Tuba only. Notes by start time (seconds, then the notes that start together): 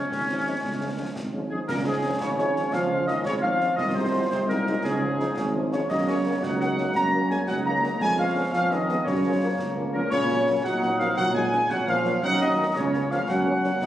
0.11 G#1
0.64 C#2
1.17 G#1
1.69 C#2
2.22 G#1
2.75 C#2
3.27 G#1
3.79 C2
4.32 C2
4.84 C#2
5.38 G#1
5.90 F#2
6.43 C#2
6.96 F#2
7.48 C#2
8.01 F2
8.54 F2
9.07 F#2
9.59 C#2
10.12 A#2
10.65 A#2
11.18 A#2
11.71 A#2
12.23 F#2
12.76 C#2
13.28 F#2
13.82 C#2